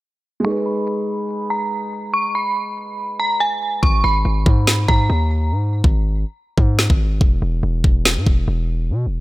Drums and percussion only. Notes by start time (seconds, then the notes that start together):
3.83 kick
4.46 kick
4.67 snare
4.89 kick
5.84 kick
6.58 kick
6.79 snare
6.90 kick
7.21 kick
7.84 kick
8.05 snare
8.27 kick